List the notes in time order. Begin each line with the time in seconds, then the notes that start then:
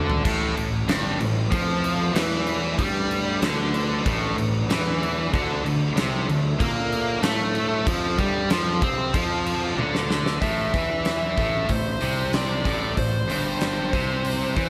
Already playing: D2 D3 D4 A4 E5
0.10 floor tom
0.24 A1 A2 A3 E4 B4, kick, crash
0.57 A1 A2, crash
0.88 G1 G2, snare, crash
1.19 A1 A2, crash
1.50 F2 F3, kick, crash
1.84 crash
2.15 E2 E3, snare, crash
2.47 crash
2.77 G2 G3 D4, kick, crash
3.11 crash
3.41 D2 D3, snare, crash
3.74 crash
4.06 A1 A2, kick, crash
4.37 A1 A2, crash
4.68 E2 E3, snare, crash
5.03 crash
5.33 D2 D3 A4 E5, kick, crash
5.65 D2 D3, crash
5.96 C2 C3, snare, crash
6.28 D2 D3, crash
6.59 A#2 A#3, kick, crash
6.92 crash
7.22 A2 A3, snare, crash
7.55 crash
7.85 F2 F3 F5, kick, crash
8.18 G2 G3, kick, crash
8.50 F2 F3, snare, crash
8.82 C3 C4, kick, crash
9.14 F2 F3, kick, crash
9.46 crash
9.77 D2 D3, high tom
9.95 snare
10.10 snare
10.26 snare
10.42 A1 A2 E5, kick, open hi-hat
10.74 E2 E3, kick, open hi-hat
11.05 E5, snare, open hi-hat
11.37 A1 A2, kick, open hi-hat
11.69 A1 A2 C5, kick, open hi-hat
12.01 C2 C3, open hi-hat
12.33 D5, snare, open hi-hat
12.65 A1 A2, kick, open hi-hat
12.97 A1 A2 C5, kick, open hi-hat
13.29 G1 G2 C5, open hi-hat
13.61 snare, open hi-hat
13.93 C2 C3, kick, open hi-hat
14.25 open hi-hat
14.56 E2 E3, kick, open hi-hat